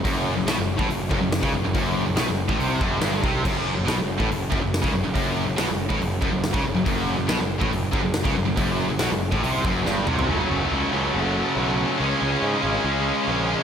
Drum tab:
CC |----------------|----------------|x---------------|----------------|
HH |o---o---o---o---|o---o---o---o---|----o---o---o---|o---o---o---o---|
SD |----o-------o---|----o-------o---|----o-------o---|----o-------o---|
T2 |----------------|----------------|----------------|----------------|
FT |----------------|----------------|----------------|----------------|
BD |o------o--o--o--|o------o--o---o-|o------o--o--o--|o------o--o--o--|

CC |----------------|----------------|----------------|----------------|
HH |o---o---o---o---|o---o---o-------|----------------|----------------|
SD |----o-------o---|----o-------o---|----------------|----------------|
T2 |----------------|--------------o-|----------------|----------------|
FT |----------------|---------------o|----------------|----------------|
BD |o------o--o--o--|o------o--o-----|----------------|----------------|